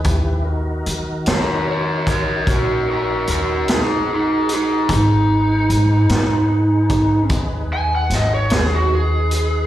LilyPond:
<<
  \new Staff \with { instrumentName = "Lead electric guitar" } { \time 12/8 \key ees \minor \tempo 4. = 50 r4. <bes' des''>8 <bes' des''>8 <bes' des''>8 <ges' bes'>8 <ges' bes'>8 <ges' bes'>8 <ees' aes'>8 <ees' aes'>8 <ees' aes'>8 | ees'2. r8 aes''16 ges''16 ees''16 des''16 aes'16 ges'16 aes'4 | }
  \new Staff \with { instrumentName = "Tonewheel organ" } { \time 12/8 \key ees \minor <fes' g' ces''>8 <ees' ges' bes'>1~ <ees' ges' bes'>4. | <ees' aes' ces''>1. | }
  \new Staff \with { instrumentName = "Upright bass" } { \clef bass \time 12/8 \key ees \minor ees,4 ees8 ees4. bes,,4 ees,8 bes,,4. | aes,,4 aes,8 aes,4. ees,4 aes,,8 ees,4. | }
  \new DrumStaff \with { instrumentName = "Drums" } \drummode { \time 12/8 <hh bd>4 hh8 <hh sn>4 <hh bd>8 <hh bd>4 hh8 <hh sn>4 hh8 | <hh bd>4 hh8 <hh sn>4 <hh bd>8 <hh bd>4 <hh sn>8 <hh sn>4 hh8 | }
>>